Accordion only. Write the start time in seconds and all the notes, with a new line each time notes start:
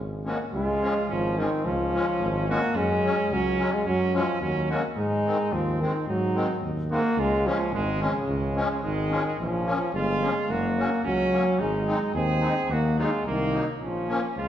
0.24 F3 G#3 C#4
0.80 F3 G#3 C#4
1.37 F3 G#3 C#4
1.93 F3 G#3 C#4
2.48 F3 G#3 C#4
3.02 F#3 G#3 C#4
3.57 F#3 G#3 C#4
4.12 F#3 G#3 C#4
4.68 F#3 G#3 C#4
5.25 D#3 G#3 C4
5.80 D#3 G#3 C4
6.34 D#3 G#3 C4
6.89 D#3 G#3 C4
7.44 F3 G#3 C#4
7.99 F3 G#3 C#4
8.54 F3 G#3 C#4
9.09 F3 G#3 C#4
9.64 F3 A#3 C#4
10.20 F3 A#3 C#4
10.77 F#3 A#3 C#4
11.31 F#3 A#3 C#4
11.86 G#3 C4 D#4
12.40 G#3 C4 D#4
12.96 F#3 A#3 D#4
13.51 F#3 A#3 D#4
14.07 F3 A#3 C#4